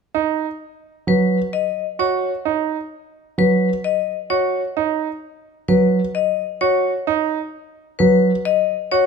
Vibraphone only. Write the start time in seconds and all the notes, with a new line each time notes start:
1.08 B4
1.53 D#5
2.00 C#5
3.39 B4
3.84 D#5
4.30 C#5
5.68 B4
6.15 D#5
6.61 C#5
7.99 B4
8.45 D#5
8.92 C#5